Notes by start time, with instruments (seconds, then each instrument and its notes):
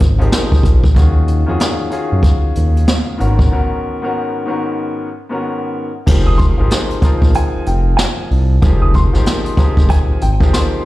0.00 analog synth bass G#1, kick, closed hi-hat
0.19 grand piano F3 C4 D#4 G4 G#4 A#4, closed hi-hat
0.32 snare, closed hi-hat
0.52 kick
0.63 analog synth bass A#1, kick, closed hi-hat
0.84 kick
0.95 analog synth bass D#2, grand piano D#3 C#4 F4 F#4 G#4, kick, closed hi-hat
1.28 closed hi-hat
1.46 analog synth bass F2, grand piano D#3 C#4 F4 F#4 G#4
1.60 snare, closed hi-hat
1.90 grand piano D#3 C#4 F4 F#4 G#4, closed hi-hat
2.12 analog synth bass F#2
2.23 kick, closed hi-hat
2.44 analog synth bass D#2
2.55 analog synth bass D#2, closed hi-hat
2.77 closed hi-hat
2.88 snare, closed hi-hat
3.18 analog synth bass G#1, grand piano G#2 D#3 B3 C#4 F#4 A#4, closed hi-hat
3.39 kick
3.51 grand piano G#2 D#3 B3 C#4 F#4 A#4
4.02 grand piano G#2 D#3 B3 C#4 F#4 A#4
4.46 grand piano G#2 D#3 B3 C#4 F#4 A#4
5.29 grand piano G#2 D#3 B3 C#4 F#4 A#4
6.06 analog synth bass F1, grand piano F3 C4 D#4 G4 G#4 A#4, kick, crash
6.27 upright piano D#6
6.38 upright piano C6, kick, closed hi-hat
6.58 analog synth bass G#1, grand piano F3 C4 D#4 G4 G#4 A#4
6.70 snare, closed hi-hat
6.90 closed hi-hat
7.02 grand piano F3 C4 D#4 F4 G#4 A#4, kick, closed hi-hat
7.22 analog synth bass A#1, kick
7.34 upright piano G#5, closed hi-hat
7.55 analog synth bass F1
7.66 analog synth bass F1, upright piano G5, closed hi-hat
7.97 upright piano G#5, snare, closed hi-hat
8.31 analog synth bass C2, open hi-hat
8.62 analog synth bass F1, grand piano F3 C4 D#4 G4 G#4 A#4, kick, closed hi-hat
8.82 upright piano D#6
8.94 upright piano C6, kick, closed hi-hat
9.13 analog synth bass G#1, grand piano F3 C4 D#4 G4 G#4 A#4, snare
9.26 snare, closed hi-hat
9.46 closed hi-hat
9.57 grand piano F3 C4 D#4 G4 G#4 A#4, kick, closed hi-hat
9.77 analog synth bass F1, kick
9.89 upright piano G#5, kick, closed hi-hat
10.10 analog synth bass G#1
10.21 analog synth bass G#1, upright piano G5, closed hi-hat
10.40 grand piano F3 C4 D#4 G4 G#4 A#4, kick
10.53 upright piano C6, snare, closed hi-hat